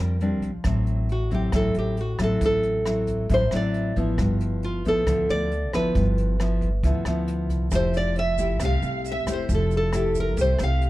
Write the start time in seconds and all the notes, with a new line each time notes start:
Already playing: F2 F3 G3 C4 D4 A#4
0.20 G3 C4 D4, closed hi-hat
0.42 A#1, kick, closed hi-hat
0.64 A1 A2 F#3 C4 E4, kick, cross-stick, closed hi-hat
0.87 closed hi-hat
1.09 F#4, closed hi-hat
1.31 F#3 C4 E4 G4, kick, closed hi-hat
1.52 A1 A2 F#3 C4 E4 A4, kick, cross-stick, closed hi-hat
1.74 A1, closed hi-hat
1.79 G4
1.97 F#4, closed hi-hat
2.19 A1 F#3 C4 E4, kick, cross-stick, closed hi-hat
2.23 A4
2.41 A1 A2, kick, closed hi-hat
2.46 A4
2.63 closed hi-hat
2.86 F#3 C4 E4, cross-stick, closed hi-hat
3.07 kick, closed hi-hat
3.29 A1 A2 F#3 C4 E4, kick, closed hi-hat
3.34 C5
3.51 A1 F#3 C4 E4, cross-stick, closed hi-hat
3.56 D5
3.74 closed hi-hat
3.96 A1 F3 B3 E4, kick, closed hi-hat
4.18 G1 G2, kick, cross-stick, closed hi-hat
4.41 closed hi-hat
4.63 F4, closed hi-hat
4.85 F3 B3 E4 A4, kick, closed hi-hat
5.07 D2 D3 F3 B3 E4, kick, cross-stick, closed hi-hat
5.29 D2 D5, closed hi-hat
5.52 closed hi-hat
5.73 G1 F3 B3 E4 B4, kick, cross-stick, closed hi-hat
5.95 G1 G2, kick, closed hi-hat
6.18 closed hi-hat
6.40 F3 B3 E4, cross-stick, closed hi-hat
6.61 kick, closed hi-hat
6.83 D2 D3 F3 B3 E4, kick, closed hi-hat
7.05 D2 F3 B3 E4, cross-stick, closed hi-hat
7.28 closed hi-hat
7.50 C2, kick, closed hi-hat
7.71 F1 F3 A3 E4 G4 C5, kick, cross-stick, closed hi-hat, shaker
7.75 C5
7.94 D5, closed hi-hat, shaker
8.16 E5, closed hi-hat
8.38 A3 E4 G4, kick, closed hi-hat, shaker
8.60 C2 C3 A3 G4 F5, kick, cross-stick, closed hi-hat, shaker
8.65 F5
8.82 C2, closed hi-hat, shaker
9.04 E5, closed hi-hat, shaker
9.12 E5
9.27 F1 A3 E4 G4, kick, cross-stick, closed hi-hat, shaker
9.31 C5
9.49 F1 F3 A4, kick, closed hi-hat, shaker
9.54 A4
9.71 closed hi-hat, shaker
9.75 A4
9.93 A3 E4 G4, cross-stick, closed hi-hat, shaker
10.15 kick, closed hi-hat, shaker
10.19 A#4
10.37 C2 C3 A3 E4 G4, kick, closed hi-hat, shaker
10.41 C5
10.59 C2 A3 G4, cross-stick, closed hi-hat, shaker
10.63 F5
10.81 closed hi-hat